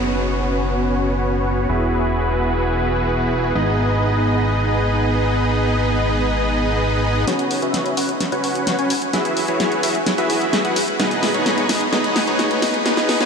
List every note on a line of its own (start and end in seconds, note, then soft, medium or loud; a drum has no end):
0.00 1.67 F#1 medium
0.00 1.67 B3 medium
0.00 1.67 C#4 medium
0.00 1.67 F#4 medium
0.00 1.67 B4 medium
0.00 1.67 C#5 medium
1.69 3.53 E1 medium
1.69 3.53 B3 medium
1.69 3.53 E4 medium
1.69 3.53 F#4 medium
1.69 3.53 G#4 medium
1.69 3.53 B4 medium
3.55 7.25 G#1 medium
3.55 7.25 B3 medium
3.55 7.25 D#4 medium
3.55 7.25 G#4 medium
3.55 7.25 B4 medium
3.55 7.25 D#5 medium
7.27 7.60 C#4 medium
7.27 7.60 F#4 medium
7.27 7.60 B4 medium
7.27 7.60 C#5 medium
7.27 7.60 F#5 medium
7.27 snare soft
7.27 closed hi-hat medium
7.39 closed hi-hat soft
7.51 open hi-hat loud
7.62 7.94 C#4 medium
7.62 7.94 F#4 medium
7.62 7.94 B4 medium
7.62 7.94 C#5 medium
7.62 7.94 E5 loud
7.62 closed hi-hat soft
7.74 snare soft
7.74 closed hi-hat medium
7.86 closed hi-hat soft
7.97 8.11 C#4 medium
7.97 8.11 F#4 medium
7.97 8.11 B4 medium
7.97 8.11 C#5 medium
7.97 8.11 F#5 medium
7.97 open hi-hat loud
8.09 closed hi-hat soft
8.21 snare soft
8.21 closed hi-hat medium
8.32 8.76 C#4 medium
8.32 8.76 F#4 medium
8.32 8.76 B4 medium
8.32 8.76 C#5 medium
8.32 8.76 F#5 medium
8.32 closed hi-hat soft
8.44 open hi-hat loud
8.55 closed hi-hat soft
8.67 snare medium
8.67 closed hi-hat medium
8.79 8.92 C#4 medium
8.79 8.92 F#4 medium
8.79 8.92 B4 medium
8.79 8.92 C#5 medium
8.79 8.92 G#5 medium
8.79 closed hi-hat soft
8.90 open hi-hat loud
9.02 closed hi-hat soft
9.13 9.46 E4 medium
9.13 9.46 F#4 medium
9.13 9.46 G#4 medium
9.13 9.46 B4 medium
9.13 9.46 E5 medium
9.13 snare medium
9.13 closed hi-hat medium
9.25 closed hi-hat soft
9.37 open hi-hat loud
9.48 9.80 E4 medium
9.48 9.80 F#4 medium
9.48 9.80 G#4 medium
9.48 9.80 B4 medium
9.48 9.80 C#5 loud
9.48 closed hi-hat soft
9.60 snare medium
9.60 closed hi-hat medium
9.72 closed hi-hat soft
9.83 9.97 E4 medium
9.83 9.97 F#4 medium
9.83 9.97 G#4 medium
9.83 9.97 B4 medium
9.83 9.97 E5 medium
9.83 open hi-hat loud
9.95 closed hi-hat soft
10.07 snare medium
10.07 closed hi-hat medium
10.18 10.62 E4 medium
10.18 10.62 F#4 medium
10.18 10.62 G#4 medium
10.18 10.62 B4 medium
10.18 10.62 E5 medium
10.18 closed hi-hat soft
10.30 open hi-hat loud
10.41 closed hi-hat soft
10.53 snare medium
10.53 closed hi-hat medium
10.65 10.78 E4 medium
10.65 10.78 F#4 medium
10.65 10.78 G#4 medium
10.65 10.78 B4 medium
10.65 10.78 F#5 medium
10.65 closed hi-hat soft
10.76 open hi-hat loud
10.88 closed hi-hat soft
11.00 11.32 B3 medium
11.00 11.32 D#4 medium
11.00 11.32 G#4 medium
11.00 11.32 B4 medium
11.00 11.32 D#5 medium
11.00 snare medium
11.00 closed hi-hat medium
11.11 closed hi-hat soft
11.23 snare medium
11.23 open hi-hat loud
11.34 11.67 B3 medium
11.34 11.67 D#4 medium
11.34 11.67 G#4 medium
11.34 11.67 B4 medium
11.34 11.67 C#5 medium
11.34 closed hi-hat soft
11.46 snare medium
11.46 closed hi-hat medium
11.58 closed hi-hat soft
11.69 11.83 B3 medium
11.69 11.83 D#4 medium
11.69 11.83 G#4 medium
11.69 11.83 B4 medium
11.69 11.83 D#5 medium
11.69 snare medium
11.69 open hi-hat loud
11.81 closed hi-hat soft
11.93 12.25 B3 medium
11.93 12.25 D#4 medium
11.93 12.25 G#4 medium
11.93 12.25 B4 medium
11.93 12.25 D#5 medium
11.93 snare medium
11.93 closed hi-hat medium
12.04 closed hi-hat soft
12.16 snare medium
12.16 open hi-hat loud
12.27 12.60 B3 medium
12.27 12.60 D#4 medium
12.27 12.60 G#4 medium
12.27 12.60 B4 medium
12.27 12.60 C#5 loud
12.27 closed hi-hat soft
12.39 snare medium
12.39 closed hi-hat medium
12.51 closed hi-hat soft
12.62 12.76 B3 medium
12.62 12.76 D#4 medium
12.62 12.76 G#4 medium
12.62 12.76 B4 medium
12.62 12.76 D#5 medium
12.62 snare medium
12.62 open hi-hat loud
12.74 closed hi-hat soft
12.86 13.18 B3 medium
12.86 13.18 D#4 medium
12.86 13.18 G#4 medium
12.86 13.18 B4 medium
12.86 13.18 D#5 medium
12.86 snare medium
12.86 closed hi-hat medium
12.97 snare medium
12.97 closed hi-hat soft
13.09 snare medium
13.09 open hi-hat loud
13.20 13.26 B3 medium
13.20 13.26 D#4 medium
13.20 13.26 G#4 medium
13.20 13.26 B4 medium
13.20 13.26 C#5 loud
13.20 snare medium
13.20 closed hi-hat soft